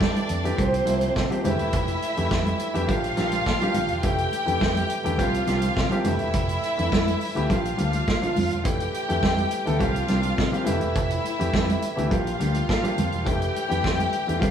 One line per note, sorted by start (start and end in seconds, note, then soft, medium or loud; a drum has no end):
0.00 0.44 E3 medium
0.00 0.44 A3 medium
0.00 0.45 D4 medium
0.00 0.56 D4 medium
0.00 0.45 G4 medium
0.00 0.56 D5 medium
0.00 kick loud
0.00 snare medium
0.00 muted conga soft
0.00 high conga medium
0.15 closed hi-hat soft
0.15 high conga medium
0.29 0.51 F2 medium
0.29 closed hi-hat medium
0.29 muted conga soft
0.44 0.58 E3 medium
0.44 0.58 A3 medium
0.44 0.58 D4 medium
0.44 0.57 G4 loud
0.44 closed hi-hat soft
0.44 low conga medium
0.57 0.80 C2 loud
0.57 0.81 F3 medium
0.57 0.81 A#3 medium
0.57 1.43 C4 medium
0.57 0.82 C4 medium
0.57 0.82 G4 loud
0.57 1.43 C5 medium
0.57 kick loud
0.57 closed hi-hat medium
0.57 muted conga soft
0.74 closed hi-hat soft
0.85 1.08 C2 loud
0.85 1.21 F3 medium
0.85 1.21 A#3 medium
0.85 1.22 C4 medium
0.85 1.22 E4 medium
0.85 closed hi-hat medium
0.85 muted conga soft
1.01 closed hi-hat medium
1.01 high conga soft
1.16 1.27 C3 loud
1.16 kick medium
1.16 snare medium
1.16 muted conga soft
1.30 1.44 F3 medium
1.30 1.44 A#3 medium
1.30 1.44 C4 medium
1.30 1.44 G4 medium
1.30 closed hi-hat soft
1.30 low conga medium
1.44 1.56 F1 medium
1.44 2.02 E3 medium
1.44 1.51 G#3 medium
1.44 2.03 D4 medium
1.44 2.86 E4 medium
1.44 2.03 G4 medium
1.44 2.86 E5 medium
1.44 closed hi-hat medium
1.44 high conga medium
1.44 low conga medium
1.50 2.05 A3 medium
1.59 1.74 E1 medium
1.59 closed hi-hat soft
1.73 1.95 F1 loud
1.73 kick loud
1.73 closed hi-hat medium
1.88 closed hi-hat soft
2.02 closed hi-hat medium
2.16 2.28 F2 medium
2.16 2.63 E3 medium
2.16 2.63 A3 medium
2.16 2.63 D4 medium
2.16 2.63 G4 medium
2.16 closed hi-hat soft
2.31 2.52 F2 loud
2.31 kick loud
2.31 snare loud
2.31 muted conga soft
2.31 high conga medium
2.45 closed hi-hat soft
2.45 high conga medium
2.59 closed hi-hat medium
2.59 muted conga soft
2.74 2.85 F2 medium
2.74 2.88 E3 medium
2.74 2.88 A3 medium
2.74 2.86 D4 medium
2.74 2.87 G4 loud
2.74 closed hi-hat soft
2.74 low conga medium
2.87 3.10 A#1 loud
2.87 3.11 F3 medium
2.87 3.11 A#3 medium
2.87 3.12 D4 medium
2.87 4.02 F4 medium
2.87 3.12 G4 medium
2.87 4.02 F5 loud
2.87 kick loud
2.87 closed hi-hat medium
3.04 closed hi-hat soft
3.17 3.39 A#1 loud
3.17 3.52 F3 medium
3.17 3.52 A#3 medium
3.17 3.52 D4 medium
3.17 3.53 G4 medium
3.17 snare soft
3.17 closed hi-hat medium
3.17 muted conga soft
3.32 closed hi-hat medium
3.32 high conga medium
3.46 3.58 A#2 medium
3.46 kick loud
3.46 snare medium
3.46 muted conga soft
3.61 3.96 F3 medium
3.61 3.96 A#3 medium
3.61 3.96 D4 medium
3.61 3.97 G4 medium
3.61 closed hi-hat soft
3.61 low conga medium
3.74 3.86 A#1 medium
3.74 closed hi-hat medium
3.74 muted conga soft
3.74 high conga medium
3.74 low conga medium
3.89 4.00 E1 medium
3.89 closed hi-hat soft
4.03 4.25 F1 loud
4.03 4.38 E3 medium
4.03 4.38 A3 medium
4.03 4.39 D4 medium
4.03 5.17 G4 medium
4.03 4.39 G4 medium
4.03 5.17 G5 medium
4.03 kick loud
4.03 closed hi-hat medium
4.03 muted conga soft
4.18 closed hi-hat soft
4.31 closed hi-hat medium
4.31 muted conga soft
4.46 4.58 F2 medium
4.46 4.93 E3 medium
4.46 4.93 A3 medium
4.46 4.93 D4 medium
4.46 4.93 G4 medium
4.46 closed hi-hat soft
4.61 4.83 F2 loud
4.61 kick loud
4.61 snare loud
4.61 high conga medium
4.75 closed hi-hat soft
4.75 high conga medium
4.89 closed hi-hat medium
4.89 muted conga soft
5.04 5.19 E2 medium
5.04 5.18 E3 medium
5.04 5.19 A3 medium
5.04 5.19 D4 medium
5.04 5.17 G4 loud
5.04 closed hi-hat soft
5.04 low conga medium
5.17 5.40 C2 medium
5.17 5.42 F3 medium
5.17 5.42 A#3 medium
5.17 5.42 C4 medium
5.17 6.04 F4 medium
5.17 5.42 G4 loud
5.17 6.04 F5 medium
5.17 kick loud
5.17 closed hi-hat medium
5.34 closed hi-hat soft
5.46 5.69 C2 loud
5.46 5.82 F3 medium
5.46 5.83 A#3 medium
5.46 5.83 C4 medium
5.46 5.83 G4 medium
5.46 snare soft
5.46 closed hi-hat medium
5.46 muted conga soft
5.62 closed hi-hat medium
5.62 high conga medium
5.76 5.88 C3 medium
5.76 kick loud
5.76 snare medium
5.76 muted conga soft
5.90 6.05 F3 medium
5.90 6.05 A#3 medium
5.90 6.05 C4 medium
5.90 6.05 G4 loud
5.90 closed hi-hat soft
5.90 low conga medium
6.04 6.17 F1 medium
6.04 6.63 E3 medium
6.04 6.64 A3 medium
6.04 6.64 D4 medium
6.04 7.47 E4 medium
6.04 6.64 G4 medium
6.04 7.47 E5 loud
6.04 closed hi-hat medium
6.04 high conga medium
6.04 low conga medium
6.19 6.31 E1 medium
6.19 closed hi-hat soft
6.34 6.56 F1 loud
6.34 kick loud
6.34 closed hi-hat medium
6.34 muted conga soft
6.49 closed hi-hat soft
6.63 closed hi-hat soft
6.77 6.89 F2 medium
6.77 7.24 E3 medium
6.77 7.24 A3 medium
6.77 7.24 D4 medium
6.77 7.24 E4 medium
6.77 closed hi-hat soft
6.92 7.14 F2 medium
6.92 kick loud
6.92 snare loud
6.92 muted conga soft
6.92 high conga medium
7.07 closed hi-hat soft
7.07 high conga medium
7.20 open hi-hat medium
7.20 muted conga soft
7.35 7.47 D2 medium
7.35 7.49 E3 medium
7.35 7.49 A3 medium
7.35 7.48 D4 medium
7.35 7.49 G4 loud
7.35 closed hi-hat soft
7.35 low conga medium
7.49 7.71 A#1 loud
7.49 7.73 F3 medium
7.49 7.73 A#3 medium
7.49 7.73 D4 medium
7.49 8.63 F4 medium
7.49 7.74 G4 medium
7.49 8.63 F5 medium
7.49 kick loud
7.49 closed hi-hat medium
7.49 muted conga soft
7.65 closed hi-hat soft
7.77 8.00 D2 medium
7.77 8.13 F3 medium
7.77 8.13 A#3 medium
7.77 8.13 D4 medium
7.77 8.13 G4 medium
7.77 closed hi-hat medium
7.93 closed hi-hat soft
7.93 high conga soft
8.07 8.19 A#2 loud
8.07 kick loud
8.07 snare medium
8.07 muted conga soft
8.21 8.56 F3 medium
8.21 8.56 A#3 medium
8.21 8.57 D4 medium
8.21 8.57 F4 medium
8.21 closed hi-hat soft
8.21 low conga medium
8.36 8.48 F2 medium
8.36 open hi-hat medium
8.36 muted conga soft
8.36 high conga medium
8.36 low conga medium
8.51 8.66 E1 medium
8.51 closed hi-hat soft
8.64 8.86 F1 medium
8.64 9.00 E3 medium
8.64 9.00 A3 medium
8.64 9.00 D4 medium
8.64 9.78 G4 medium
8.64 9.00 G4 medium
8.64 9.78 G5 medium
8.64 kick loud
8.64 closed hi-hat medium
8.64 muted conga soft
8.80 closed hi-hat soft
8.94 closed hi-hat medium
9.08 9.20 F2 medium
9.08 9.54 E3 medium
9.08 9.55 A3 medium
9.08 9.55 D4 medium
9.08 9.55 G4 medium
9.08 closed hi-hat soft
9.23 9.44 F2 loud
9.23 kick loud
9.23 snare loud
9.23 muted conga soft
9.23 high conga medium
9.37 closed hi-hat soft
9.37 high conga medium
9.51 closed hi-hat medium
9.51 muted conga soft
9.65 9.77 D2 medium
9.65 9.80 E3 medium
9.65 9.80 A3 medium
9.65 9.80 D4 medium
9.65 9.80 A4 loud
9.65 closed hi-hat soft
9.65 low conga medium
9.79 10.02 C2 medium
9.79 10.03 F3 medium
9.79 10.03 A#3 medium
9.79 10.04 C4 medium
9.79 10.65 F4 medium
9.79 10.04 G4 loud
9.79 10.65 F5 medium
9.79 kick loud
9.79 closed hi-hat medium
9.79 muted conga soft
9.96 closed hi-hat soft
10.07 10.31 C2 medium
10.07 10.43 F3 medium
10.07 10.44 A#3 medium
10.07 10.44 C4 medium
10.07 10.44 D4 medium
10.07 snare soft
10.07 closed hi-hat medium
10.07 muted conga soft
10.23 closed hi-hat medium
10.23 high conga medium
10.38 10.50 C3 loud
10.38 kick loud
10.38 snare medium
10.38 muted conga soft
10.51 10.66 F3 medium
10.51 10.66 A#3 medium
10.51 10.66 C4 medium
10.51 10.65 G4 medium
10.51 closed hi-hat soft
10.51 low conga medium
10.64 10.79 F1 medium
10.64 11.24 E3 medium
10.64 11.24 A3 medium
10.64 11.24 D4 medium
10.64 12.08 E4 medium
10.64 11.25 G4 medium
10.64 12.08 E5 medium
10.64 closed hi-hat medium
10.64 high conga medium
10.64 low conga medium
10.81 10.93 E1 medium
10.81 closed hi-hat soft
10.96 11.17 F1 loud
10.96 kick loud
10.96 closed hi-hat medium
11.10 closed hi-hat soft
11.25 closed hi-hat medium
11.25 muted conga soft
11.38 11.50 F2 medium
11.38 11.85 E3 medium
11.38 11.85 A3 medium
11.38 11.85 D4 medium
11.38 11.86 G4 loud
11.38 closed hi-hat soft
11.54 11.75 F2 loud
11.54 kick loud
11.54 snare loud
11.54 high conga medium
11.69 closed hi-hat soft
11.69 high conga medium
11.82 closed hi-hat medium
11.82 muted conga soft
11.96 12.08 D2 medium
11.96 12.10 E3 medium
11.96 12.10 A3 medium
11.96 12.08 D4 medium
11.96 12.09 G4 loud
11.96 closed hi-hat soft
11.96 low conga medium
12.09 12.33 A#1 loud
12.09 12.34 F3 medium
12.09 12.34 A#3 medium
12.09 12.34 D4 medium
12.09 13.24 F4 medium
12.09 12.34 G4 medium
12.09 13.24 F5 medium
12.09 kick loud
12.09 closed hi-hat medium
12.09 muted conga soft
12.27 closed hi-hat soft
12.39 12.61 D2 medium
12.39 12.74 F3 medium
12.39 12.75 A#3 medium
12.39 12.75 D4 medium
12.39 12.75 G4 medium
12.39 closed hi-hat medium
12.39 muted conga soft
12.55 closed hi-hat soft
12.55 high conga medium
12.69 12.80 A#2 loud
12.69 kick loud
12.69 snare loud
12.69 muted conga soft
12.82 13.18 F3 medium
12.82 13.18 A#3 medium
12.82 13.18 D4 medium
12.82 13.18 G4 medium
12.82 closed hi-hat soft
12.82 low conga medium
12.98 13.09 F2 medium
12.98 closed hi-hat medium
12.98 muted conga soft
12.98 high conga medium
12.98 low conga medium
13.12 13.23 E1 loud
13.12 closed hi-hat soft
13.25 13.48 F1 loud
13.25 13.61 E3 medium
13.25 13.61 A3 medium
13.25 13.61 D4 medium
13.25 14.39 G4 medium
13.25 13.61 G4 medium
13.25 14.39 G5 medium
13.25 kick loud
13.25 closed hi-hat medium
13.42 closed hi-hat soft
13.56 closed hi-hat medium
13.56 muted conga soft
13.69 13.81 F2 medium
13.69 14.15 E3 medium
13.69 14.16 A3 medium
13.69 14.16 D4 medium
13.69 14.16 G4 loud
13.69 closed hi-hat soft
13.84 14.06 F2 loud
13.84 kick loud
13.84 snare loud
13.84 muted conga soft
13.84 high conga medium
13.99 closed hi-hat soft
13.99 high conga medium
14.13 closed hi-hat soft
14.13 muted conga soft
14.27 14.38 E2 medium
14.27 14.41 E3 medium
14.27 14.41 A3 medium
14.27 14.41 D4 medium
14.27 14.40 G4 medium
14.27 closed hi-hat soft
14.27 low conga medium
14.40 14.51 C2 loud
14.40 14.51 F3 medium
14.40 14.51 A#3 medium
14.40 14.51 C4 medium
14.40 14.51 F4 medium
14.40 14.51 G4 loud
14.40 14.51 F5 medium
14.40 kick loud
14.40 closed hi-hat medium
14.40 muted conga soft